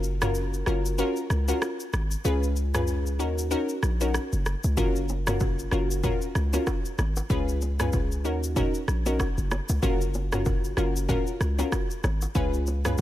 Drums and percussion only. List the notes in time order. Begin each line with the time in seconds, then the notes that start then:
0.03 shaker
0.22 cross-stick, mid tom, shaker
0.35 shaker
0.54 shaker
0.66 cross-stick, shaker
0.86 shaker
0.98 shaker
1.16 shaker
1.30 cross-stick, shaker
1.48 shaker
1.62 cross-stick, shaker
1.80 shaker
1.93 cross-stick, shaker
2.11 shaker
2.25 shaker
2.43 shaker
2.56 shaker
2.75 cross-stick, mid tom, shaker
2.87 shaker
3.06 shaker
3.20 shaker
3.38 shaker
3.51 shaker
3.69 shaker
3.83 cross-stick, shaker
4.01 shaker
4.14 cross-stick, shaker
4.33 shaker
4.46 cross-stick, shaker
4.64 shaker
4.77 kick, low conga, shaker
4.96 shaker
5.09 low bongo, shaker
5.27 cross-stick, mid tom, low bongo, shaker
5.40 kick, high bongo, low conga, shaker
5.59 shaker
5.71 cross-stick, shaker
5.91 shaker
6.04 kick, low conga, shaker
6.22 shaker
6.35 cross-stick, shaker
6.53 low bongo, shaker
6.67 kick, cross-stick, high bongo, shaker
6.85 shaker
6.98 cross-stick, low bongo, shaker
7.16 high bongo, shaker
7.30 kick, low conga, shaker
7.49 shaker
7.61 low bongo, shaker
7.80 cross-stick, mid tom, low bongo, shaker
7.93 kick, high bongo, low conga, shaker
8.12 shaker
8.25 shaker
8.44 shaker
8.56 kick, low conga, shaker
8.74 shaker
8.88 cross-stick, shaker
9.06 low bongo, shaker
9.20 kick, cross-stick, high bongo, shaker
9.38 shaker
9.51 cross-stick, low bongo, shaker
9.69 high bongo, shaker
9.83 kick, low conga, shaker
10.01 shaker
10.14 low bongo, shaker
10.32 cross-stick, mid tom, low bongo, shaker
10.45 kick, high bongo, low conga, shaker
10.64 shaker
10.77 cross-stick, shaker
10.96 shaker
11.09 kick, low conga, shaker
11.27 shaker
11.41 cross-stick, shaker
11.59 low bongo, shaker
11.72 kick, cross-stick, high bongo, shaker
11.91 shaker
12.04 cross-stick, low bongo, shaker
12.22 high bongo, shaker
12.35 kick, low conga, shaker
12.54 shaker
12.67 low bongo, shaker
12.85 cross-stick, mid tom, low bongo, shaker
12.98 shaker